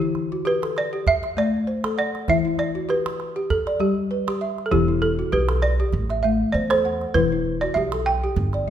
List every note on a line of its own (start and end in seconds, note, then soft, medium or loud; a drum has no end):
0.00 0.15 E3 medium
0.00 0.46 E4 medium
0.00 0.48 G4 medium
0.15 calabash click soft
0.32 0.76 F#4 medium
0.45 0.76 G4 medium
0.45 0.78 B4 medium
0.45 calabash click soft
0.62 1.07 A4 medium
0.62 calabash click soft
0.77 1.08 D5 medium
0.77 calabash click soft
0.93 1.07 G4 medium
1.07 1.39 E5 loud
1.07 calabash thump medium
1.23 1.67 E5 medium
1.23 calabash click soft
1.37 1.68 A3 medium
1.37 1.97 D5 medium
1.67 2.15 C5 medium
1.84 2.15 A4 medium
1.84 calabash click medium
1.98 2.30 D5 medium
1.98 2.45 F#5 medium
2.15 calabash click soft
2.28 2.59 E3 medium
2.28 2.44 E4 medium
2.28 2.60 E5 medium
2.28 calabash thump medium
2.45 2.89 E4 medium
2.59 2.90 D5 medium
2.59 calabash click soft
2.75 3.20 F#4 medium
2.89 3.20 G4 medium
2.89 3.53 B4 medium
2.89 calabash click soft
3.06 calabash click medium
3.20 calabash click soft
3.36 3.50 G4 medium
3.50 3.79 A4 medium
3.50 calabash thump medium
3.67 4.11 D5 medium
3.67 calabash click soft
3.80 4.11 G3 medium
3.80 4.38 G4 medium
4.11 4.58 B4 medium
4.28 4.58 G4 medium
4.28 calabash click medium
4.41 4.89 E5 medium
4.58 calabash click soft
4.66 4.72 A4 medium
4.71 5.21 E1 medium
4.71 5.02 E3 medium
4.71 4.87 E4 medium
4.71 5.03 G4 medium
4.71 calabash thump medium
4.88 5.33 E4 medium
5.02 5.34 A4 medium
5.02 calabash click soft
5.19 5.63 F#4 medium
5.32 5.82 B1 medium
5.32 5.63 G4 medium
5.32 5.64 B4 medium
5.32 calabash click soft
5.49 5.94 A4 medium
5.49 calabash click soft
5.62 6.26 D5 medium
5.62 calabash click soft
5.80 5.94 G4 medium
5.93 6.43 A1 medium
5.93 calabash thump medium
6.10 6.55 E5 medium
6.10 calabash click soft
6.23 6.55 A3 medium
6.23 6.55 E5 medium
6.52 7.03 E2 medium
6.52 7.02 C5 medium
6.52 6.71 D5 medium
6.70 7.02 A4 medium
6.70 7.16 C5 medium
6.70 calabash click soft
6.85 7.32 F#5 medium
7.01 calabash click soft
7.14 7.64 E1 medium
7.14 7.46 E3 medium
7.14 7.31 E4 medium
7.14 7.64 B4 medium
7.14 calabash thump medium
7.32 7.77 E4 medium
7.61 8.07 F#4 medium
7.61 7.76 D5 medium
7.61 calabash click soft
7.74 8.25 B1 medium
7.74 8.07 G4 medium
7.74 8.07 E5 medium
7.74 calabash click soft
7.92 8.38 A4 medium
7.92 calabash click soft
8.06 8.70 G5 medium
8.24 8.38 G4 medium
8.36 8.70 G1 medium
8.36 calabash thump medium
8.53 8.70 D5 medium
8.53 calabash click soft